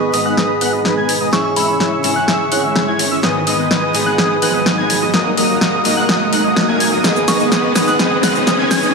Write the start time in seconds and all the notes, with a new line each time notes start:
Already playing: G#2 D#3 G#3 B3 D#4 G#4 B4 D#5 B5 D#6, riser
0.12 G#1 G#2 D#3 G#3 B3 D#4 G#4 B4 D#5 D#6, open hi-hat
0.25 G#3 B3 D#4 B4 F#5 D#6 F#6
0.37 G#1 G#3 B3 D#4 B4 D#5 D#6, snare
0.61 G#1 G#3 B3 D#4 B4 F#5 F#6, open hi-hat
0.73 G#3 B3 D#4 B4 D#5 D#6
0.85 G#1, snare
0.97 G#3 B3 D#4 B4 G#5 G#6
1.09 G#1, open hi-hat
1.21 G#3 B3 D#4 B4 D#5 D#6
1.31 G#1 G#2 E3 G#3 C#4 E4 G#4 C#5 E5 C#6 E6, snare
1.45 C#6
1.56 G#1 G#3 C#4 E4 C#5 E5 B5 E6, open hi-hat
1.68 G#3 C#4 E4 C#5 E5 B5 E6
1.80 G#1 G#3 C#4 E4 C#5 E5 E6, snare
2.03 G#1 G#2 E3 G#3 C#4 E4 G#4 C#5 E5 E6, open hi-hat
2.16 G#3 C#4 E4 C#5 F#5 F#6
2.28 G#1 G#3 C#4 E4 C#5 E5 E6, snare
2.52 G#1 G#3 C#4 E4 C#5 F#5 F#6, open hi-hat
2.64 G#3 C#4 E4 C#5 E5 E6
2.75 G#1, snare
2.87 G#3 C#4 E4 C#5 G#5 G#6
2.99 G#1, open hi-hat
3.11 G#3 C#4 E4 C#5 E5 E6
3.22 G#1 G#2 D#3 G#3 B3 D#4 G#4 B4 D#5 G#5 D#6, snare
3.47 G#1 G#3 B3 D#4 B4 D#5 D#6, open hi-hat
3.59 G#3 B3 D#4 B4 D#5 D#6
3.71 G#1 G#3 B3 D#4 B4 D#5 D#6, snare
3.93 G#1 G#2 D#3 G#3 B3 D#4 G#4 B4 D#5 D#6, open hi-hat
4.06 G#3 B3 D#4 B4 F#5 F#6
4.18 G#1 G#3 B3 D#4 B4 D#5 D#6, snare
4.42 G#1 G#3 B3 D#4 B4 F#5 F#6, open hi-hat
4.54 G#3 B3 D#4 B4 D#5 D#6
4.66 G#1, snare
4.78 G#3 B3 D#4 B4 G#5 G#6
4.90 G#1, open hi-hat
5.02 G#3 B3 D#4 B4 D#5 D#6
5.13 G#1 G#2 D#3 F#3 A#3 D#4 F#4 A#4 D#5 F#5 D#6, snare
5.37 G#1 F#3 A#3 D#4 A#4 D#5 D#6, open hi-hat
5.49 F#3 A#3 D#4 A#4 D#5 D#6
5.61 G#1 F#3 A#3 D#4 A#4 D#5 D#6, snare
5.84 G#1 G#2 D#3 F#3 A#3 D#4 F#4 A#4 D#5 D#6, open hi-hat
5.97 F#3 A#3 D#4 A#4 F#5 F#6
6.09 G#1 F#3 A#3 D#4 A#4 D#5 D#6, snare
6.33 G#1 F#3 A#3 D#4 A#4 F#5 F#6, open hi-hat
6.45 F#3 A#3 D#4 A#4 D#5 D#6
6.56 G#1, snare
6.68 F#3 A#3 D#4 A#4 G#5 G#6
6.80 G#1, open hi-hat
6.92 F#3 A#3 D#4 A#4 D#5 D#6
7.03 G#1 G#2 D#3 G#3 B3 D#4 G#4 B4 D#5 G#5 D#6, snare, shaker
7.16 shaker
7.28 G#1 G#3 B3 D#4 B4 D#5 C#6 D#6, snare, open hi-hat, shaker
7.40 G#3 B3 D#4 B4 D#5 C#6 D#6, shaker
7.52 G#1 G#3 B3 D#4 B4 D#5 D#6, snare, shaker
7.74 G#1 G#2 D#3 G#3 B3 D#4 G#4 B4 D#5 D#6, snare, open hi-hat, shaker
7.87 G#3 B3 D#4 B4 F#5 D#6 F#6, shaker
7.99 G#1 G#3 B3 D#4 B4 D#5 D#6, snare, shaker
8.23 G#1 G#3 B3 D#4 B4 F#5 F#6, snare, open hi-hat, shaker
8.35 G#3 B3 D#4 B4 D#5 D#6, shaker
8.47 G#1, snare, shaker
8.59 G#3 B3 D#4 B4 G#5 G#6
8.71 G#1 G#6, snare, open hi-hat, shaker
8.83 G#3 B3 D#4 B4 D#5 D#6, shaker